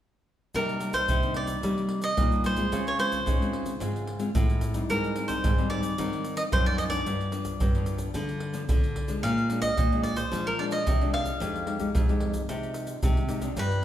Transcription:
0.54 nylon-string guitar C3 G3 A#3 D#4, cavaquinho A#4, pandeiro, shaker, surdo
0.69 pandeiro, shaker
0.80 nylon-string guitar G3 A#3 D#4, pandeiro, shaker
0.93 cavaquinho C5, pandeiro, shaker, surdo
1.08 nylon-string guitar G2 C3, pandeiro, shaker, surdo
1.23 nylon-string guitar G3 A#3 D#4, pandeiro, shaker, surdo
1.34 cavaquinho D5, pandeiro
1.47 pandeiro, shaker, surdo
1.62 nylon-string guitar C3 G3 A#3 D#4, pandeiro, shaker, surdo
1.78 pandeiro, shaker
1.89 pandeiro
2.02 cavaquinho D#5, pandeiro, shaker
2.17 nylon-string guitar G2 A#2 G3 A#3 D#4, pandeiro, shaker, surdo
2.32 pandeiro, shaker
2.44 nylon-string guitar G3 A#3 D#4, cavaquinho C5, pandeiro, shaker, surdo
2.56 nylon-string guitar G#3 C4 F4, pandeiro, shaker, surdo
2.72 nylon-string guitar C#3, pandeiro, shaker, surdo
2.87 cavaquinho C#5, pandeiro, shaker
2.98 nylon-string guitar G#3 C4 F4, cavaquinho C5, pandeiro, shaker
3.12 pandeiro, shaker, surdo
3.26 nylon-string guitar G#2 C#3, pandeiro, shaker, surdo
3.40 nylon-string guitar G#3 C4 F4, pandeiro, shaker, surdo
3.53 pandeiro
3.66 pandeiro, shaker, surdo
3.80 nylon-string guitar G#2 C#3 G#3 C4 F4, pandeiro, shaker, surdo
3.96 pandeiro, shaker
4.07 pandeiro
4.19 nylon-string guitar G#3 C4 F4, pandeiro, shaker
4.35 nylon-string guitar A2 G#3 C4 F4, pandeiro, shaker, surdo
4.50 pandeiro, shaker
4.61 pandeiro, shaker, surdo
4.74 nylon-string guitar G3 C4 D#4, pandeiro, shaker, surdo
4.90 nylon-string guitar G#2, cavaquinho A#4, pandeiro, shaker, surdo
5.04 pandeiro, shaker
5.16 nylon-string guitar G3 C4 D#4, pandeiro, shaker
5.28 nylon-string guitar G3 C4 D#4, cavaquinho C5, pandeiro, shaker, surdo
5.44 nylon-string guitar G#2 D#3, pandeiro, shaker, surdo
5.58 nylon-string guitar G3 C4 D#4, pandeiro, shaker, surdo
5.70 cavaquinho D5, pandeiro
5.83 pandeiro, shaker, surdo
5.98 nylon-string guitar G#2 D#3 G3 C4 D#4, pandeiro, shaker, surdo
6.13 pandeiro, shaker
6.24 pandeiro, shaker
6.37 cavaquinho D#5, pandeiro, shaker
6.52 nylon-string guitar F#2 D#3 G3 C4 D#4, cavaquinho C5, pandeiro, shaker, surdo
6.66 cavaquinho D5, pandeiro, shaker
6.78 cavaquinho D#5, pandeiro, shaker
6.90 nylon-string guitar F3 B3 D4, cavaquinho D5, pandeiro, shaker, surdo
7.06 nylon-string guitar G2, pandeiro, shaker, surdo
7.21 pandeiro, shaker
7.32 nylon-string guitar F3 B3 D4, pandeiro, shaker
7.45 pandeiro, shaker, surdo
7.60 nylon-string guitar G2 D3, pandeiro, shaker, surdo
7.75 nylon-string guitar F3 B3 D4, pandeiro, shaker, surdo
7.86 pandeiro, shaker
7.98 pandeiro, shaker, surdo
8.14 nylon-string guitar G2 D3 F3 B3 D4, pandeiro, shaker, surdo
8.29 pandeiro, shaker
8.40 pandeiro
8.54 nylon-string guitar F3 B3 D4, pandeiro, shaker
8.69 nylon-string guitar D3 F3 B3 D4, pandeiro, shaker, surdo
8.84 pandeiro, shaker
8.96 pandeiro, surdo
9.08 nylon-string guitar F3 G#3 D4, pandeiro, shaker, surdo
9.23 nylon-string guitar A#2, cavaquinho F5, pandeiro, shaker, surdo
9.38 pandeiro, shaker
9.50 nylon-string guitar F3 G#3 D4, pandeiro, shaker
9.62 cavaquinho D#5, pandeiro, shaker, surdo
9.77 nylon-string guitar F2 A#2, pandeiro, shaker, surdo
9.92 nylon-string guitar F3 G#3 D4, pandeiro, shaker, surdo
10.03 cavaquinho D5, pandeiro, shaker
10.16 cavaquinho C5, pandeiro, shaker, surdo
10.32 nylon-string guitar A#2 F3 G#3 D4, pandeiro, shaker, surdo
10.47 cavaquinho A#4, pandeiro, shaker
10.58 nylon-string guitar F3 G#3 D4, cavaquinho D5, pandeiro
10.71 cavaquinho D#5, pandeiro, shaker
10.87 nylon-string guitar C3, pandeiro, shaker, surdo
11.01 nylon-string guitar F3 G#3 D4, pandeiro, shaker
11.14 cavaquinho F5, pandeiro
11.25 pandeiro, shaker, surdo
11.40 nylon-string guitar F2 F3 G#3 D#4 G4, pandeiro, shaker, surdo
11.55 pandeiro, shaker
11.66 nylon-string guitar G#3 D#4 G4, pandeiro
11.79 nylon-string guitar G#3 D#4 G4, pandeiro, shaker, surdo
11.95 nylon-string guitar F2 C3, pandeiro, shaker, surdo
12.09 nylon-string guitar G#3 D#4 G4, pandeiro, shaker, surdo
12.20 pandeiro
12.34 pandeiro, shaker, surdo
12.49 nylon-string guitar C3 F3 G#3 D#4 G4, pandeiro, shaker, surdo
12.63 pandeiro, shaker
12.74 pandeiro, shaker
12.87 pandeiro, shaker
13.02 nylon-string guitar C3 G#3 D#4 G4, pandeiro, shaker, surdo
13.17 pandeiro, shaker
13.29 nylon-string guitar G#3 D#4 G4, pandeiro, shaker, surdo
13.41 nylon-string guitar F3 B3 D4, pandeiro, shaker, surdo
13.57 nylon-string guitar G2, cavaquinho B4, pandeiro, shaker, surdo
13.71 pandeiro, shaker

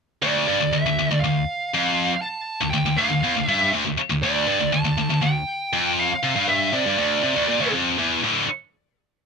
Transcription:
0.22 distorted electric guitar D2, lead electric guitar D5
0.48 distorted electric guitar G2
0.61 distorted electric guitar D2
0.72 distorted electric guitar D2, lead electric guitar E5
0.86 distorted electric guitar D2
0.99 distorted electric guitar D2
1.11 distorted electric guitar D2
1.21 distorted electric guitar D2, lead electric guitar F5
1.74 distorted electric guitar F2
2.22 lead electric guitar A5
2.61 distorted electric guitar D2
2.70 distorted electric guitar D2, lead electric guitar G5
2.86 distorted electric guitar D2
2.97 distorted electric guitar D2, lead electric guitar F5
3.11 distorted electric guitar D2
3.24 distorted electric guitar E2
3.37 distorted electric guitar D2
3.47 distorted electric guitar G2, lead electric guitar E5
3.74 distorted electric guitar D2
3.86 distorted electric guitar D2
3.98 muted distorted electric guitar stroke
4.10 distorted electric guitar D2
4.22 distorted electric guitar D2, lead electric guitar D5
4.48 distorted electric guitar G2
4.60 distorted electric guitar D2
4.72 distorted electric guitar D2, lead electric guitar A5
4.85 distorted electric guitar D2
4.98 distorted electric guitar D2
5.10 distorted electric guitar D2
5.22 distorted electric guitar D2, lead electric guitar G5
5.73 distorted electric guitar F2
5.99 lead electric guitar F5
6.23 distorted electric guitar C3
6.36 distorted electric guitar G2
6.48 lead electric guitar E5
6.73 distorted electric guitar C3, lead electric guitar D5
6.86 distorted electric guitar G2
6.98 distorted electric guitar D2
7.23 distorted electric guitar C3
7.36 distorted electric guitar D2
7.49 distorted electric guitar A#2
7.61 distorted electric guitar D2
7.74 distorted electric guitar F2
7.99 distorted electric guitar E2
8.24 distorted electric guitar D2 A2 D3

